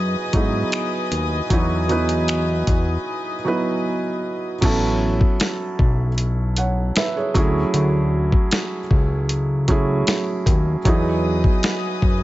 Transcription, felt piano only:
Already playing: F#3 B3 D#4 E4 G#4
0.33 F#3 B3 D#4 E4 G#4
1.50 F#3 B3 D#4 E4 F#4
1.88 F#3 B3 D#4 E4 B4
3.45 F#3 B3 D#4 E4 B4
4.61 F#3 B3 C#4 E4 A4
6.58 C#5 F#5
6.97 B4 E5
7.17 G#4 C#5
7.34 F#3 A3 C#4 E4 G#4
9.68 F#3 A3 C#4 E4 G#4
10.85 F#3 B3 D#4 E4 G#4

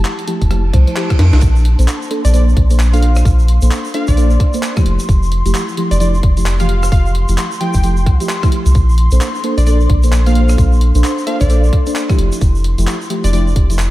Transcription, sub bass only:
0.42 F1
0.73 C2
1.19 F2
1.33 C2
1.79 A#1
2.25 A#1
3.62 A#1
4.08 A#1
4.86 F1
5.09 F1
5.46 F1
5.91 F1
6.92 F1
7.29 F1
7.75 F1
8.06 C2
8.66 C2
8.75 A#1
9.12 A#1
9.58 A#1
9.90 A#1
10.95 A#1
11.41 A#1
12.19 F1
12.41 F1
12.78 F1
13.24 F1

